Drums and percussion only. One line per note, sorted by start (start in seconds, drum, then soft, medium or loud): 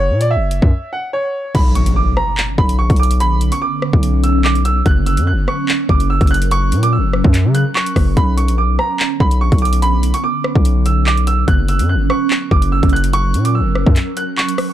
0.21 closed hi-hat medium
0.51 closed hi-hat medium
0.62 kick loud
1.55 kick loud
1.55 closed hi-hat medium
1.55 crash loud
1.75 closed hi-hat medium
1.86 closed hi-hat medium
2.17 cross-stick medium
2.37 clap loud
2.58 kick medium
2.69 closed hi-hat medium
2.90 kick loud
2.90 closed hi-hat soft
2.96 closed hi-hat medium
3.03 closed hi-hat medium
3.11 closed hi-hat medium
3.20 closed hi-hat medium
3.41 closed hi-hat medium
3.52 closed hi-hat medium
3.82 cross-stick medium
3.93 kick loud
4.03 closed hi-hat medium
4.24 closed hi-hat medium
4.45 clap loud
4.55 closed hi-hat soft
4.65 closed hi-hat medium
4.86 kick loud
4.86 closed hi-hat medium
5.06 closed hi-hat medium
5.17 closed hi-hat medium
5.48 cross-stick medium
5.68 clap loud
5.89 kick medium
6.00 closed hi-hat medium
6.21 kick loud
6.21 closed hi-hat soft
6.27 closed hi-hat medium
6.34 closed hi-hat medium
6.42 closed hi-hat medium
6.51 closed hi-hat medium
6.72 closed hi-hat medium
6.83 closed hi-hat medium
7.13 cross-stick medium
7.24 kick loud
7.34 clap medium
7.34 closed hi-hat medium
7.55 closed hi-hat medium
7.76 clap loud
7.86 closed hi-hat medium
7.96 kick medium
7.96 cross-stick loud
7.96 open hi-hat medium
8.17 kick loud
8.17 closed hi-hat medium
8.38 closed hi-hat medium
8.48 closed hi-hat medium
8.79 cross-stick medium
9.00 clap loud
9.20 kick loud
9.31 closed hi-hat medium
9.52 kick loud
9.52 closed hi-hat soft
9.58 closed hi-hat medium
9.65 closed hi-hat medium
9.73 closed hi-hat medium
9.82 closed hi-hat medium
10.03 closed hi-hat medium
10.14 closed hi-hat medium
10.44 cross-stick loud
10.55 kick loud
10.65 closed hi-hat medium
10.86 closed hi-hat medium
11.07 clap loud
11.17 closed hi-hat soft
11.27 closed hi-hat medium
11.48 kick loud
11.48 closed hi-hat medium
11.68 closed hi-hat medium
11.79 closed hi-hat medium
12.10 cross-stick medium
12.30 clap loud
12.51 kick loud
12.62 closed hi-hat medium
12.83 kick loud
12.83 closed hi-hat soft
12.89 closed hi-hat medium
12.96 closed hi-hat medium
13.04 closed hi-hat medium
13.13 closed hi-hat medium
13.34 closed hi-hat medium
13.45 closed hi-hat medium
13.75 cross-stick medium
13.86 kick loud
13.96 clap medium
13.96 closed hi-hat medium
14.17 closed hi-hat medium
14.38 clap loud
14.49 closed hi-hat medium
14.58 cross-stick loud
14.58 open hi-hat medium